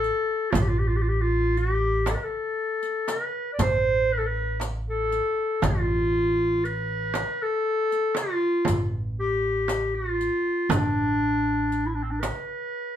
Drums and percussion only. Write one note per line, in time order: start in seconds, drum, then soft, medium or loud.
0.02 riq soft
0.02 darbuka ka soft
0.53 riq medium
0.53 frame drum loud
0.53 darbuka dum loud
1.57 riq soft
2.06 riq soft
2.06 darbuka tek medium
2.06 frame drum medium
2.83 riq soft
3.08 riq soft
3.08 darbuka tek medium
3.08 frame drum medium
3.59 riq medium
3.59 darbuka dum medium
3.59 frame drum medium
4.60 riq soft
4.60 darbuka tek medium
4.60 frame drum medium
5.12 riq soft
5.12 darbuka ka soft
5.62 riq medium
5.62 darbuka dum medium
5.62 frame drum loud
6.65 riq soft
7.14 riq soft
7.14 darbuka tek medium
7.14 frame drum medium
7.92 riq soft
8.15 riq soft
8.15 darbuka tek medium
8.15 frame drum medium
8.65 riq medium
8.65 frame drum medium
8.65 darbuka dum medium
9.68 riq soft
9.68 darbuka tek medium
9.68 frame drum medium
10.20 riq soft
10.20 darbuka ka soft
10.70 riq soft
10.70 frame drum loud
10.70 darbuka dum medium
11.71 riq soft
11.71 darbuka ka soft
12.23 riq medium
12.23 darbuka tek medium
12.23 frame drum medium